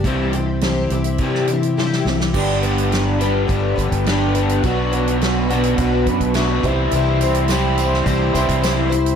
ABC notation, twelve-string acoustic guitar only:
X:1
M:4/4
L:1/8
Q:1/4=105
K:Clyd
V:1 name="Twelve-string acoustic guitar"
[C,G,CEG] [CEG] [C,G,CEG] [CEG] [G,CEG] [CEG] [C,G,CEG] [CEG] | [G,,D,G,B,DB] [G,B,DB] [G,B,DB] [G,B,DB] [G,,D,G,B,DB] [G,B,DB] [G,B,DB] [G,B,DB] | [B,,F,B,DFB] [B,DFB] [B,DFB] [B,DFB] [B,,F,B,DFB] [B,DFB] [B,DFB] [CEc] | [C,G,CEc] [CEc] [G,CEc] [CEc] [C,G,CEc] [CEc] [G,CEc] [CEc] |]